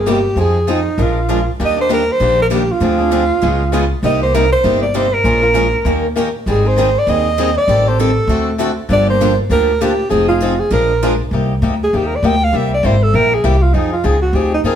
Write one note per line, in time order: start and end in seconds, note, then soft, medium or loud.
0.00 0.25 G1 medium
0.06 0.17 C3 medium
0.06 0.17 G3 medium
0.06 0.18 A#3 medium
0.06 0.18 D#4 medium
0.06 0.18 G4 loud
0.10 0.37 G4 medium
0.36 0.85 F2 medium
0.36 0.57 F3 medium
0.36 0.57 C4 medium
0.36 0.57 D#4 medium
0.36 0.57 G#4 medium
0.41 0.73 G#4 medium
0.67 0.78 F3 medium
0.67 0.79 C4 medium
0.67 0.79 D#4 medium
0.67 1.03 D#4 medium
0.67 0.79 G#4 medium
0.98 1.47 A#1 medium
0.98 1.18 F3 medium
0.98 1.18 G#3 medium
0.98 1.18 D4 medium
0.98 1.18 F4 medium
0.98 1.18 A#4 medium
1.02 1.49 F4 medium
1.28 1.40 F3 medium
1.28 1.40 G#3 medium
1.28 1.40 D4 medium
1.28 1.40 F4 medium
1.28 1.40 A#4 medium
1.60 2.08 D#2 medium
1.60 1.77 D#3 medium
1.60 1.77 G3 medium
1.60 1.77 A#3 medium
1.60 1.76 D4 medium
1.60 1.76 G4 medium
1.65 1.79 D#5 medium
1.77 1.88 A#3 soft
1.77 1.89 D4 soft
1.77 1.89 G4 medium
1.81 1.91 C5 medium
1.89 2.00 D#3 medium
1.89 2.00 G3 medium
1.89 2.01 A#3 medium
1.89 2.01 D4 medium
1.89 2.01 G4 medium
1.93 2.13 A#4 medium
2.12 2.41 C5 medium
2.20 2.69 A#1 medium
2.20 2.40 D#3 medium
2.20 2.41 G3 medium
2.20 2.41 A#3 medium
2.20 2.41 D4 medium
2.20 2.41 G4 medium
2.42 2.47 A#4 medium
2.51 2.62 D#3 medium
2.51 2.62 G3 medium
2.51 2.62 A#3 medium
2.51 2.62 D4 medium
2.51 2.62 G4 loud
2.51 2.73 G4 medium
2.72 3.92 F4 loud
2.81 3.30 D2 medium
2.81 2.99 D3 medium
2.81 2.99 F3 medium
2.81 2.99 C4 medium
2.81 2.99 D4 medium
2.81 2.97 G#4 medium
2.98 3.10 C4 soft
2.98 3.11 D4 soft
2.98 3.11 G#4 medium
3.11 3.22 D3 medium
3.11 3.22 F3 medium
3.11 3.23 C4 medium
3.11 3.23 D4 medium
3.11 3.23 G#4 medium
3.42 3.91 C#2 medium
3.42 3.62 C#3 medium
3.42 3.62 G#3 medium
3.42 3.62 B3 medium
3.42 3.63 F4 medium
3.42 3.63 G#4 medium
3.72 3.83 C#3 medium
3.72 3.83 G#3 medium
3.72 3.84 B3 medium
3.72 3.84 F4 medium
3.72 3.84 G#4 loud
4.03 4.52 C2 medium
4.03 4.21 C3 medium
4.03 4.21 G3 medium
4.03 4.21 A#3 medium
4.03 4.21 D#4 medium
4.03 4.20 G4 medium
4.03 4.21 D#5 medium
4.21 4.33 A#3 soft
4.21 4.34 D#4 soft
4.21 4.33 G4 medium
4.21 4.36 C5 medium
4.34 4.45 C3 medium
4.34 4.45 G3 medium
4.34 4.45 A#3 medium
4.34 4.45 D#4 loud
4.34 4.45 G4 medium
4.34 4.52 A#4 medium
4.52 4.81 C5 medium
4.64 5.13 G1 medium
4.64 4.84 C3 medium
4.64 4.84 G3 medium
4.64 4.84 A#3 medium
4.64 4.84 D#4 medium
4.64 4.84 G4 medium
4.83 4.98 D5 medium
4.94 5.05 C3 medium
4.94 5.06 G3 medium
4.94 5.05 A#3 medium
4.94 5.06 D#4 medium
4.94 5.06 G4 medium
4.94 5.15 C5 medium
5.13 6.07 A#4 medium
5.24 5.73 A#1 medium
5.24 5.42 F3 medium
5.24 5.42 G#3 medium
5.24 5.42 C#4 medium
5.24 5.41 F4 medium
5.24 5.40 A#4 medium
5.41 5.53 C#4 soft
5.41 5.54 F4 medium
5.41 5.54 A#4 medium
5.54 5.65 F3 medium
5.54 5.65 G#3 medium
5.54 5.66 C#4 medium
5.54 5.66 F4 medium
5.54 5.66 A#4 medium
5.85 6.34 D#2 medium
5.85 6.05 D#3 medium
5.85 6.05 A#3 medium
5.85 6.06 C#4 medium
5.85 6.06 G4 medium
5.85 6.06 A#4 medium
6.16 6.27 D#3 medium
6.16 6.27 A#3 medium
6.16 6.27 C#4 medium
6.16 6.27 G4 medium
6.16 6.27 A#4 loud
6.46 6.95 G#1 medium
6.46 6.64 D#3 medium
6.46 6.65 G3 medium
6.46 6.65 C4 medium
6.46 6.64 D#4 medium
6.46 6.63 G#4 medium
6.51 6.69 G#4 medium
6.65 6.77 C4 soft
6.65 6.77 D#4 medium
6.65 6.76 G#4 medium
6.65 7.00 C5 loud
6.76 6.88 D#3 medium
6.76 6.88 G3 medium
6.76 6.88 C4 medium
6.76 6.88 D#4 medium
6.76 6.89 G#4 medium
6.98 7.11 D5 medium
7.07 7.56 D#2 medium
7.07 7.28 D#3 medium
7.07 7.27 G3 medium
7.07 7.28 C4 medium
7.07 7.28 D#4 medium
7.07 7.28 G#4 medium
7.07 7.57 D#5 loud
7.38 7.49 D#3 medium
7.38 7.49 G3 medium
7.38 7.49 C4 medium
7.38 7.49 D#4 medium
7.38 7.50 G#4 loud
7.58 7.90 D5 loud
7.68 8.17 A1 medium
7.68 7.86 D#3 medium
7.68 7.86 G3 medium
7.68 7.86 C4 medium
7.68 7.86 G4 medium
7.68 7.86 A4 medium
7.87 7.99 C4 soft
7.87 7.98 G4 soft
7.87 7.99 A4 medium
7.87 8.00 C5 medium
7.99 8.10 D#3 medium
7.99 8.10 G3 medium
7.99 8.10 C4 medium
7.99 8.10 G4 medium
7.99 8.56 A4 medium
7.99 8.10 A4 medium
8.27 8.77 D2 medium
8.27 8.49 D3 medium
8.27 8.49 A3 medium
8.27 8.49 C4 medium
8.27 8.49 F#4 medium
8.27 8.49 A4 medium
8.58 8.70 D3 medium
8.58 8.70 A3 medium
8.58 8.70 C4 medium
8.58 8.70 F#4 loud
8.58 8.70 A4 loud
8.89 9.38 G1 medium
8.89 9.07 D3 medium
8.89 9.07 F3 medium
8.89 9.07 A#3 medium
8.89 9.07 D4 medium
8.89 9.06 G4 medium
8.93 9.08 D5 loud
9.07 9.20 A#3 soft
9.07 9.20 D4 medium
9.07 9.19 G4 medium
9.07 9.37 C5 loud
9.20 9.31 D3 medium
9.20 9.31 F3 medium
9.20 9.31 A#3 medium
9.20 9.32 D4 medium
9.20 9.32 G4 medium
9.49 9.98 D2 medium
9.49 9.70 D3 medium
9.49 9.70 F3 medium
9.49 9.70 A#3 medium
9.49 9.70 D4 medium
9.49 9.70 G4 medium
9.49 9.83 A#4 loud
9.81 9.92 D3 medium
9.81 9.92 F3 medium
9.81 9.92 A#3 loud
9.81 9.92 D4 loud
9.81 10.09 G4 medium
9.81 9.92 G4 medium
10.09 10.60 F1 medium
10.09 10.28 F3 medium
10.09 10.28 C4 medium
10.09 10.28 D#4 medium
10.09 10.27 G#4 medium
10.09 10.28 G#4 medium
10.28 10.41 C4 soft
10.28 10.41 D#4 medium
10.28 10.61 F4 medium
10.28 10.41 G#4 medium
10.42 10.52 F3 medium
10.42 10.53 C4 medium
10.42 10.53 D#4 loud
10.42 10.53 G#4 medium
10.60 10.72 G#4 medium
10.71 11.20 A#1 medium
10.71 10.91 F3 medium
10.71 10.91 G#3 medium
10.71 10.92 D4 medium
10.71 10.92 F4 medium
10.71 11.17 A#4 medium
10.71 10.92 A#4 medium
11.02 11.13 F3 medium
11.02 11.13 G#3 medium
11.02 11.13 D4 medium
11.02 11.13 F4 medium
11.02 11.14 A#4 loud
11.31 11.61 C2 medium
11.31 11.52 C3 medium
11.31 11.52 G3 medium
11.31 11.52 A#3 medium
11.31 11.53 D#4 medium
11.31 11.53 G4 medium
11.62 11.92 D2 medium
11.62 11.73 C3 medium
11.62 11.74 G3 medium
11.62 11.73 A#3 medium
11.62 11.74 D#4 medium
11.62 11.74 G4 medium
11.83 11.98 G#4 medium
11.93 12.22 D#2 medium
11.93 12.13 C3 medium
11.93 12.13 G3 medium
11.93 12.13 A#3 medium
11.93 12.13 D#4 medium
11.93 12.13 G4 medium
11.93 12.08 G4 medium
12.07 12.17 A#4 medium
12.16 12.28 D5 medium
12.23 12.52 D2 medium
12.23 12.34 C3 medium
12.23 12.34 G3 medium
12.23 12.34 A#3 medium
12.23 12.34 D#4 loud
12.23 12.35 G4 loud
12.23 12.45 G5 medium
12.44 12.58 F5 medium
12.53 12.82 C2 medium
12.53 12.73 C3 medium
12.53 12.73 G3 medium
12.53 12.73 A#3 medium
12.53 12.73 E4 medium
12.53 12.73 G4 medium
12.53 12.73 E5 medium
12.74 12.87 D5 medium
12.83 13.13 G#1 medium
12.83 12.94 C3 medium
12.83 12.95 G3 medium
12.83 12.95 A#3 medium
12.83 12.95 E4 loud
12.83 12.95 G4 medium
12.83 13.05 C5 medium
13.03 13.17 A4 medium
13.14 13.43 A#1 medium
13.14 13.33 C3 medium
13.14 13.33 G3 medium
13.14 13.34 A#3 medium
13.14 13.34 E4 medium
13.14 13.34 G4 medium
13.14 13.36 A#4 loud
13.34 13.47 G#4 medium
13.44 13.73 C2 medium
13.44 13.55 C3 medium
13.44 13.55 G3 medium
13.44 13.55 A#3 loud
13.44 13.55 E4 loud
13.44 13.55 G4 loud
13.44 13.64 G4 medium
13.62 13.75 F4 medium
13.73 14.03 F2 medium
13.73 13.94 F3 medium
13.73 13.94 C4 medium
13.73 13.92 D#4 medium
13.73 13.94 D#4 medium
13.73 13.94 G#4 medium
13.93 14.06 F4 medium
14.04 14.32 C#2 medium
14.04 14.15 F3 medium
14.04 14.15 C4 medium
14.04 14.15 D#4 medium
14.04 14.21 G#4 medium
14.04 14.15 G#4 medium
14.22 14.36 F#4 medium
14.33 14.63 D2 medium
14.33 14.54 F3 medium
14.33 14.54 C4 medium
14.33 14.55 D#4 medium
14.33 14.53 G4 medium
14.33 14.55 G#4 medium
14.54 14.61 D#4 medium
14.64 14.75 D#2 medium
14.64 14.75 F3 loud
14.64 14.75 C4 medium
14.64 14.75 D#4 loud
14.64 14.75 G#4 loud
14.64 14.75 A#4 medium